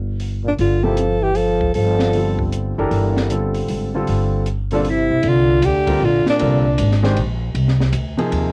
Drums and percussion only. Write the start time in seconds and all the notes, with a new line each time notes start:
0.20 open hi-hat
0.59 open hi-hat
0.97 closed hi-hat
1.35 open hi-hat
1.61 kick
1.74 open hi-hat
1.99 snare
2.13 open hi-hat
2.39 kick
2.52 closed hi-hat
2.91 open hi-hat
3.17 snare
3.30 closed hi-hat
3.54 open hi-hat
3.68 open hi-hat
4.07 open hi-hat
4.46 closed hi-hat
4.71 open hi-hat
4.85 open hi-hat
5.23 ride
5.62 hi-hat pedal, ride
5.87 kick, ride
6.26 snare
6.39 ride
6.78 hi-hat pedal, ride
6.91 snare
7.04 snare
7.17 ride
7.55 ride
7.68 snare
7.80 snare
7.93 hi-hat pedal, ride
8.19 ride
8.32 ride